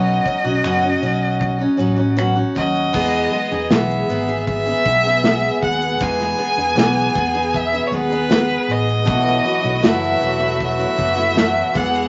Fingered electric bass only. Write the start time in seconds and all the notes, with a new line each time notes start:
Already playing: B1
0.45 B1
0.63 F#1
1.02 B1
1.79 A1
2.56 D#2
2.94 E2
3.52 E2
3.71 B1
4.09 G#1
4.86 B1
5.63 D#2
6.00 E2
6.58 E2
6.76 B1
7.15 E2
7.91 D#2
8.68 A1
9.07 B1
9.64 B1
9.83 F#1
10.21 E1
10.99 F#1
11.75 E2